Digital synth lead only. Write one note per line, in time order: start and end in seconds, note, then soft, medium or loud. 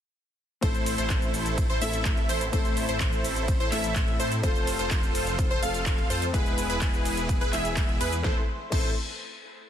0.62 0.95 C5 loud
0.98 1.67 C5 medium
1.70 1.79 C5 loud
1.82 2.26 E5 medium
2.29 2.43 C5 loud
2.53 2.86 C5 loud
2.89 3.57 C5 medium
3.60 3.69 C5 loud
3.72 4.17 E5 medium
4.20 4.33 C5 loud
4.43 4.76 C5 loud
4.79 5.48 C5 medium
5.51 5.60 C5 loud
5.63 6.07 F5 medium
6.10 6.24 C5 medium
6.34 6.67 B4 loud
6.70 7.38 B4 medium
7.41 7.50 B4 loud
7.53 7.98 E5 medium
8.01 8.14 B4 loud
8.24 8.38 C5 loud
8.72 8.90 C5 loud